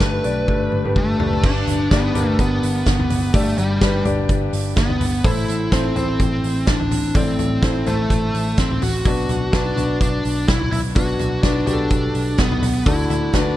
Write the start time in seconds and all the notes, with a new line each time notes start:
Already playing: G2 A4 B4 D5
0.00 G1 A3 D4 G4 B4, kick, snare, closed hi-hat
0.24 B1 A3 D4 G4 D5, closed hi-hat
0.47 G1 A3 D4 G4 A4, kick, high tom
0.72 G1, mid tom
0.85 A3 D4 G4 B4, mid tom
0.96 G1 A3, kick, mid tom
1.19 F#1 A3 D4 G4 B4, floor tom
1.33 floor tom
1.43 G1 G2 D4 G4 B4, kick, crash
1.67 G1, floor tom, hi-hat pedal, open hi-hat
1.90 G1 B3 D4 G4 D5, kick, snare, hi-hat pedal, open hi-hat
2.14 G1 D4 G4 A#4, floor tom, hi-hat pedal, open hi-hat
2.21 B4
2.39 G1 B3, kick, hi-hat pedal, open hi-hat
2.63 G1, hi-hat pedal, open hi-hat
2.86 G1, kick, snare, hi-hat pedal, open hi-hat
3.00 floor tom
3.10 G1, floor tom, hi-hat pedal, open hi-hat
3.33 G1 G2 A3 D4 G4 D5, kick, hi-hat pedal, open hi-hat
3.58 G1 G3, hi-hat pedal, open hi-hat
3.81 G1 D4 G4 B4, kick, snare, hi-hat pedal, open hi-hat
4.05 G1 D4 G4 D5, floor tom, hi-hat pedal, open hi-hat
4.29 G1, kick, hi-hat pedal, open hi-hat
4.53 G1, hi-hat pedal, open hi-hat
4.76 G1 B3, kick, snare, hi-hat pedal, open hi-hat
4.90 floor tom
5.01 G1, floor tom, hi-hat pedal, open hi-hat
5.24 A1 A2 E4 A4 C5, kick, hi-hat pedal, open hi-hat
5.48 A1, hi-hat pedal, open hi-hat
5.71 A1 C4 E4 A4 C5, kick, snare, hi-hat pedal, open hi-hat
5.95 A1 C4 E4 A4 C5, floor tom, hi-hat pedal, open hi-hat
6.20 A1, kick, hi-hat pedal, open hi-hat
6.44 A1, hi-hat pedal, open hi-hat
6.67 A1 D4, kick, snare, hi-hat pedal, open hi-hat
6.81 floor tom
6.91 A1, floor tom, hi-hat pedal, open hi-hat
7.14 A1 A2 C4 E4 A4 D5, kick, hi-hat pedal, open hi-hat
7.39 A1, floor tom, hi-hat pedal, open hi-hat
7.62 A1 E4 A4 C5, kick, snare, hi-hat pedal, open hi-hat
7.85 A1 A3 E4 A4 C5, floor tom, hi-hat pedal, open hi-hat
8.10 A1, kick, hi-hat pedal, open hi-hat
8.34 A1, hi-hat pedal, open hi-hat
8.57 A1 C4, kick, snare, hi-hat pedal, open hi-hat
8.71 floor tom
8.82 A1 F#4, floor tom, hi-hat pedal, open hi-hat
9.05 B1 B2 D4 F#4 B4, kick, hi-hat pedal, open hi-hat
9.29 B1, floor tom, hi-hat pedal, open hi-hat
9.52 B1 D4 F#4 B4, kick, snare, hi-hat pedal, open hi-hat
9.76 B1 D4 F#4 B4, floor tom, hi-hat pedal, open hi-hat
10.01 B1 D4, kick, hi-hat pedal, open hi-hat
10.24 B1, hi-hat pedal, open hi-hat
10.48 B1 E4, kick, snare, hi-hat pedal, open hi-hat
10.62 floor tom
10.72 B1 E4, floor tom, hi-hat pedal, open hi-hat
10.95 B1 B2 D4 F#4 B4, kick, hi-hat pedal, open hi-hat
11.19 B1, floor tom, hi-hat pedal, open hi-hat
11.43 B1 D4 F#4 B4, kick, snare, hi-hat pedal, open hi-hat
11.66 B1 D4 F#4 G4, floor tom, hi-hat pedal, open hi-hat
11.73 A4
11.90 B1, kick, hi-hat pedal, open hi-hat
12.14 B1, hi-hat pedal, open hi-hat
12.38 B1 B3, kick, snare, hi-hat pedal, open hi-hat
12.52 floor tom
12.62 B1, floor tom, hi-hat pedal, open hi-hat
12.85 D2 D3 D4 E4 F#4 A4, kick, hi-hat pedal, open hi-hat
13.10 D2, floor tom, hi-hat pedal, open hi-hat
13.33 D2 D4 F#4 B4, kick, snare, hi-hat pedal, open hi-hat
13.41 D4